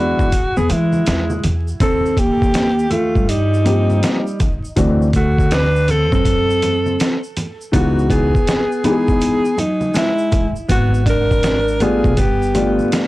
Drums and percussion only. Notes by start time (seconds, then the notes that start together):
0.19 kick, shaker
0.32 kick, closed hi-hat, shaker
0.57 shaker
0.69 closed hi-hat, low conga, shaker
0.93 high conga, shaker
1.06 snare, closed hi-hat, shaker
1.30 high conga, shaker
1.44 closed hi-hat, low conga, shaker
1.68 shaker
1.80 kick, closed hi-hat, shaker
2.06 shaker
2.17 kick, closed hi-hat, shaker
2.42 kick, shaker
2.54 snare, closed hi-hat, shaker
2.79 shaker
2.91 closed hi-hat, low conga, shaker
3.15 kick, shaker
3.29 closed hi-hat, shaker
3.54 shaker
3.66 closed hi-hat, low conga, shaker
3.90 high conga, shaker
4.03 snare, closed hi-hat, shaker
4.27 shaker
4.40 kick, closed hi-hat, low conga, shaker
4.65 shaker
4.77 kick, closed hi-hat, shaker
5.02 shaker
5.13 kick, closed hi-hat, shaker
5.38 kick, shaker
5.51 snare, closed hi-hat, shaker
5.76 shaker
5.88 closed hi-hat, low conga, shaker
6.12 kick, shaker
6.25 kick, closed hi-hat, shaker
6.50 shaker
6.62 closed hi-hat, low conga, shaker
6.86 high conga, shaker
7.00 snare, closed hi-hat, shaker
7.23 shaker
7.37 closed hi-hat, low conga, shaker
7.61 shaker
7.73 kick, closed hi-hat, shaker
7.99 shaker
8.10 kick, closed hi-hat, shaker
8.35 kick, shaker
8.47 snare, closed hi-hat, shaker
8.72 shaker
8.84 closed hi-hat, low conga, shaker
9.08 kick, shaker
9.21 closed hi-hat, shaker
9.45 shaker
9.58 closed hi-hat, low conga, shaker
9.81 high conga, shaker
9.94 snare, closed hi-hat, shaker
10.18 shaker
10.32 kick, closed hi-hat, low conga, shaker
10.56 shaker
10.69 kick, closed hi-hat, shaker
10.94 shaker
11.06 kick, closed hi-hat, shaker
11.31 kick, shaker
11.43 snare, closed hi-hat, shaker
11.68 shaker
11.80 closed hi-hat, low conga, shaker
12.04 kick, shaker
12.17 kick, closed hi-hat, shaker
12.42 shaker
12.55 closed hi-hat, low conga, shaker
12.79 high conga, shaker
12.92 snare, closed hi-hat, shaker